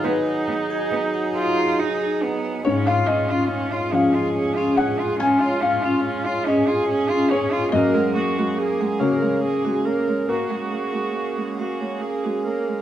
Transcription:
<<
  \new Staff \with { instrumentName = "Felt piano" } { \time 6/8 \key fis \major \tempo 4. = 47 b'2~ b'8 r8 | cis''16 eis''16 dis''4 eis''4 fis''8 | gis''8 eis''4 dis''4 cis''8 | dis''4. cis''4. |
ais'4. r4. | }
  \new Staff \with { instrumentName = "Felt piano" } { \clef bass \time 6/8 \key fis \major dis2. | gis,4. eis4.~ | eis2. | fis,4. cis4.~ |
cis2. | }
  \new Staff \with { instrumentName = "Vibraphone" } { \time 6/8 \key fis \major gis'16 fis''16 r16 gis'16 r16 fis''16 gis'16 dis''16 r16 gis'16 dis''16 dis''16 | cis'16 cis''16 r16 cis'16 r16 cis''16 cis'16 gis'16 r16 cis'16 gis'16 gis'16 | cis'16 cis''16 r16 cis'16 r16 cis''16 cis'16 gis'16 r16 cis'16 gis'16 gis'16 | fis'16 fis''16 r16 fis'16 r16 fis''16 fis'16 cis''16 r16 fis'16 cis''16 cis''16 |
fis'16 fis''16 r16 fis'16 r16 fis''16 fis'16 cis''16 r16 fis'16 cis''16 cis''16 | }
  \new Staff \with { instrumentName = "Viola" } { \time 6/8 \key fis \major dis'2~ dis'16 r8. | eis'4. gis'4. | eis'4. gis'4. | ais'8 fis'8 gis'8 ais'8 gis'8 ais'8 |
fis'4. fis'8 gis'8 ais'8 | }
  \new Staff \with { instrumentName = "Harmonium" } { \time 6/8 \key fis \major <fis dis' gis'>2. | <gis cis' gis'>2.~ | <gis cis' gis'>2. | <ais cis' gis'>2.~ |
<ais cis' gis'>2. | }
  \new Staff \with { instrumentName = "Cello" } { \time 6/8 \key fis \major b8 b8 b8 eis'8 dis'8 b8 | cis'16 eis'16 cis'16 eis'16 cis'16 eis'16 cis'16 eis'16 cis'16 eis'16 cis'16 eis'16 | cis'16 eis'16 cis'16 eis'16 cis'16 eis'16 cis'16 eis'16 cis'16 eis'16 cis'16 eis'16 | ais16 gis16 ais16 gis16 ais16 gis16 ais16 gis16 ais16 gis16 ais16 gis16 |
ais16 gis16 ais16 gis16 ais16 gis16 ais16 gis16 ais16 gis16 ais16 gis16 | }
>>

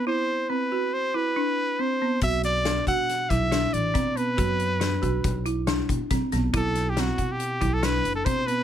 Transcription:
<<
  \new Staff \with { instrumentName = "Trumpet" } { \time 5/4 \key b \phrygian \tempo 4 = 139 c''4 b'4 c''8 b'4. c''4 | e''8 d''4 fis''4 e''4 d''4 b'8~ | b'2~ b'8 r2 r8 | a'8. g'16 fis'8. g'4 a'16 b'8. a'16 c''8 b'8 | }
  \new Staff \with { instrumentName = "Marimba" } { \time 5/4 \key b \phrygian e'4 c'8 fis'4 e'8 d'4 c'8 b8 | fis'4 d'8 fis'4 e'8 d'4 c'8 b8 | fis'4 d'8 fis'4 e'8 d'4 c'8 b8 | e'4 c'8 fis''4 e'8 d'4 c'8 b8 | }
  \new Staff \with { instrumentName = "Upright bass" } { \clef bass \time 5/4 \key b \phrygian r1 r4 | b,,4. b,4 b,,4 a,,8 b,4 | fis,4. b,,8 b,,4. b,16 r16 b,,16 r16 b,,8 | b,,4. b,4 b,,4 fis,,8 b,4 | }
  \new DrumStaff \with { instrumentName = "Drums" } \drummode { \time 5/4 r4 r4 r4 r4 r4 | <hh bd>8 <hh sn>8 <hh sn>8 <hh bd>8 <hh sn>8 <hh bd sn>8 <hh sn>8 hh8 <hh bd sn>8 hh8 | <hh bd>8 hh8 <hh sn>8 <hh bd>8 <hh bd>8 hh8 <hh sn>8 <hh bd>8 <hh bd sn>8 <hh sn>8 | <hh bd>8 <hh sn>8 <hh sn>8 <hh bd>8 hh8 <hh bd>8 <hh sn>8 hh8 <hh bd sn>8 hh8 | }
>>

